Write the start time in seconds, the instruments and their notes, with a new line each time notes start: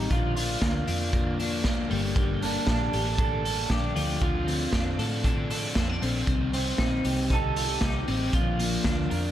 Already playing: clean electric guitar G3 C4 D#4, overdriven electric guitar C4 D#4
0.08 fingered electric bass A#1, overdriven electric guitar A#2 D3 F3 A#3 D4, clean electric guitar F4, kick, closed hi-hat
0.35 overdriven electric guitar F3 A#3 D4, clean electric guitar F4, open hi-hat
0.61 fingered electric bass D2, overdriven electric guitar D3 F3 A#3 D4, kick, snare, closed hi-hat
0.86 fingered electric bass F2, overdriven electric guitar F3 A#3 D4, open hi-hat
1.12 overdriven electric guitar A#2 D3 F3 A#3 D4, kick, closed hi-hat
1.36 overdriven electric guitar F3 A#3 D4, open hi-hat
1.62 fingered electric bass D2, overdriven electric guitar D3 F3 A#3 D4, kick, snare, closed hi-hat
1.88 fingered electric bass G1, overdriven electric guitar G3 A#3 D4 A4, open hi-hat
2.15 overdriven electric guitar G2 D3 G3 A#3 D4 A4, kick, closed hi-hat
2.41 overdriven electric guitar G3 A#3 D4 A4, clean electric guitar D4, open hi-hat
2.66 fingered electric bass A#1, overdriven electric guitar G3 A#3 D4 A4, clean electric guitar D4, kick, snare, closed hi-hat
2.92 fingered electric bass A1, overdriven electric guitar G3 A#3 D4 A4, clean electric guitar G4, open hi-hat
3.06 clean electric guitar A4
3.18 overdriven electric guitar G2 D3 G3 A#3 D4 A4, clean electric guitar A4, kick, closed hi-hat
3.43 overdriven electric guitar G3 A#3 D4 A4, open hi-hat
3.69 fingered electric bass A#1, overdriven electric guitar G3 A#3 D4 A4, clean electric guitar G4, kick, snare, closed hi-hat
3.95 fingered electric bass D2, clean electric guitar F3, overdriven electric guitar C4 D4 A4, open hi-hat
4.20 fingered electric bass D2, overdriven electric guitar D3 F3 C4 D4 A4, clean electric guitar F4, kick, closed hi-hat
4.45 overdriven electric guitar C4 D4 A4, open hi-hat
4.72 fingered electric bass F2, overdriven electric guitar F3 C4 D4 A4, kick, snare, closed hi-hat
4.98 fingered electric bass A2, overdriven electric guitar C4 D4 A4, open hi-hat
5.24 overdriven electric guitar D3 F3 C4 D4 A4, kick, closed hi-hat
5.50 overdriven electric guitar C4 D4 A4, open hi-hat
5.75 fingered electric bass F2, overdriven electric guitar F3 C4 D4 A4, kick, snare, closed hi-hat
5.90 clean electric guitar D4
6.02 fingered electric bass A#1, overdriven electric guitar C4 D4 A4, open hi-hat
6.27 fingered electric bass C2, overdriven electric guitar C3 G3 C4 D#4, kick, closed hi-hat
6.52 overdriven electric guitar G3 C4 D#4, clean electric guitar C4, open hi-hat
6.78 fingered electric bass A#1, overdriven electric guitar C3 G3 C4 D#4, clean electric guitar C4, kick, snare, closed hi-hat
7.05 fingered electric bass C2, overdriven electric guitar G3 C4 D#4, clean electric guitar G4, open hi-hat
7.30 overdriven electric guitar C3 G3 C4 D#4, clean electric guitar A4, kick, closed hi-hat
7.56 overdriven electric guitar G3 C4 D#4, clean electric guitar F4, open hi-hat
7.69 clean electric guitar G4
7.81 fingered electric bass C2, overdriven electric guitar C3 G3 C4 D#4, clean electric guitar G4, kick, snare, closed hi-hat
8.06 fingered electric bass A1, overdriven electric guitar G3 C4 D#4, open hi-hat
8.33 fingered electric bass A#1, overdriven electric guitar A#2 D3 F3 A#3 D4, clean electric guitar F4, kick, closed hi-hat
8.58 overdriven electric guitar F3 A#3 D4, open hi-hat
8.84 fingered electric bass D2, overdriven electric guitar D3 F3 A#3 D4, kick, snare, closed hi-hat
9.10 fingered electric bass F2, overdriven electric guitar F3 A#3 D4, clean electric guitar A#4, open hi-hat